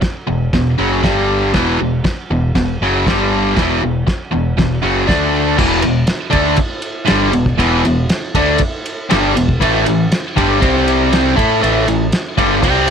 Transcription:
0.02 muted overdriven electric guitar stroke, kick, snare, crash
0.27 picked electric bass E1, overdriven electric guitar E2 B2
0.53 picked electric bass E1, overdriven electric guitar E2 B2, kick, snare, crash
0.78 picked electric bass F#1, overdriven electric guitar F#2 C#3 F#3
1.03 picked electric bass G1, overdriven electric guitar G2 D3 G3, kick, snare, crash
1.54 picked electric bass E1, overdriven electric guitar E2 B2 E3, kick, snare, crash
1.79 picked electric bass E1, overdriven electric guitar E2 B2
2.04 muted overdriven electric guitar stroke, kick, snare, crash
2.30 picked electric bass E1, overdriven electric guitar E2 B2
2.55 picked electric bass E1, overdriven electric guitar E2 B2, kick, snare, crash
2.81 picked electric bass F#1, overdriven electric guitar F#2 C#3 F#3
3.07 picked electric bass G1, overdriven electric guitar G2 D3 G3, kick, snare, crash
3.56 picked electric bass E1, overdriven electric guitar E2 B2 E3, kick, snare, crash
3.83 picked electric bass E1, overdriven electric guitar E2 B2
4.07 muted overdriven electric guitar stroke, muted picked electric bass stroke, kick, snare, crash
4.31 picked electric bass E1, overdriven electric guitar E2 B2
4.58 picked electric bass E1, overdriven electric guitar E2 B2, kick, snare, crash
4.82 picked electric bass F#1, overdriven electric guitar F#2 C#3 F#3
5.07 picked electric bass D2, overdriven electric guitar D3 A3 D4, kick, snare, crash
5.58 picked electric bass E1, overdriven electric guitar E2 B2 E3, kick, crash
5.82 picked electric bass E1, overdriven electric guitar E2 B2, ride
6.07 snare, ride
6.30 picked electric bass D2, overdriven electric guitar D3 A3 D4, kick, ride
6.56 muted overdriven electric guitar stroke, muted picked electric bass stroke, kick, ride
6.82 ride
7.06 picked electric bass G1, overdriven electric guitar G2 D3 G3, snare, ride
7.32 picked electric bass E1, overdriven electric guitar E2 B2, ride
7.46 kick
7.58 picked electric bass E1, overdriven electric guitar E2 B2 E3, kick, ride
7.85 picked electric bass E1, overdriven electric guitar E2 B2, ride
8.09 snare, ride
8.35 picked electric bass D2, overdriven electric guitar D3 A3 D4, kick, ride
8.58 muted overdriven electric guitar stroke, kick, ride
8.86 ride
9.10 picked electric bass G1, overdriven electric guitar G2 D3 G3, snare, ride
9.35 picked electric bass E1, overdriven electric guitar E2 B2, ride
9.49 kick
9.60 picked electric bass A1, overdriven electric guitar A2 E3 A3, kick, ride
9.85 picked electric bass A1, overdriven electric guitar A2 E3, ride
10.12 snare, ride
10.36 picked electric bass G1, overdriven electric guitar G2 D3 G3, kick, ride
10.60 picked electric bass C2, overdriven electric guitar C3 G3 C4, kick, ride
10.88 ride
11.13 snare, ride
11.36 picked electric bass A2, overdriven electric guitar A3 E4 A4, kick, ride
11.61 picked electric bass A1, overdriven electric guitar A2 E3 A3, ride
11.87 picked electric bass A1, overdriven electric guitar A2 E3, ride
12.12 snare, ride
12.37 picked electric bass G1, overdriven electric guitar G2 D3 G3, kick, ride
12.63 picked electric bass C2, overdriven electric guitar C3 G3 C4, kick, ride

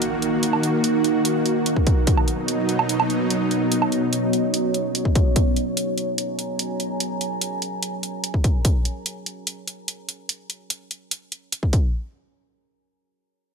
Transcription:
Already playing: supersaw synth D#3 A#3 F#4, ambient pad D#4 A#4 F#5, impact
0.02 closed hi-hat
0.22 closed hi-hat
0.43 closed hi-hat
0.53 low woodblock
0.63 closed hi-hat
0.84 closed hi-hat
1.04 closed hi-hat
1.25 closed hi-hat
1.46 closed hi-hat
1.66 closed hi-hat
1.76 kick
1.87 kick, closed hi-hat
2.07 supersaw synth B2 F#3 D#4, ambient pad B3, kick, closed hi-hat
2.17 ambient pad F#4 D#5, low woodblock
2.28 closed hi-hat
2.37 ambient pad C#5
2.48 closed hi-hat
2.69 closed hi-hat
2.79 low woodblock
2.89 closed hi-hat
3.00 low woodblock
3.10 closed hi-hat
3.30 closed hi-hat
3.51 closed hi-hat
3.72 closed hi-hat
3.82 low woodblock
3.92 closed hi-hat
4.13 closed hi-hat
4.33 closed hi-hat
4.54 closed hi-hat
4.74 closed hi-hat
4.95 closed hi-hat
5.05 kick
5.15 kick, closed hi-hat
5.36 kick, closed hi-hat
5.56 closed hi-hat
5.66 ambient pad A#5
5.73 ambient pad G#5
5.77 closed hi-hat
5.98 closed hi-hat
6.18 closed hi-hat
6.39 closed hi-hat
6.59 closed hi-hat
6.80 closed hi-hat
7.00 closed hi-hat
7.21 closed hi-hat
7.41 closed hi-hat
7.62 closed hi-hat
7.83 closed hi-hat
8.03 closed hi-hat
8.24 closed hi-hat
8.34 kick
8.44 kick, closed hi-hat
8.65 kick, closed hi-hat
8.85 closed hi-hat
9.06 closed hi-hat
9.26 closed hi-hat
9.47 closed hi-hat
9.67 closed hi-hat
9.88 closed hi-hat
10.09 closed hi-hat
10.29 closed hi-hat
10.50 closed hi-hat
10.70 closed hi-hat
10.91 closed hi-hat
11.11 closed hi-hat
11.32 closed hi-hat
11.52 closed hi-hat
11.63 kick
11.73 kick, closed hi-hat

